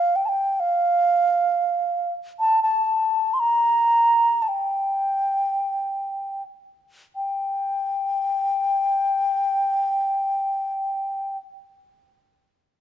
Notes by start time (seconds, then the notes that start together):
Already playing: F5
0.16 G5
0.26 G5 A5
0.60 F5
2.40 A5
2.63 A5
3.34 C6
3.40 A#5
4.42 A5
4.48 G5
7.16 G5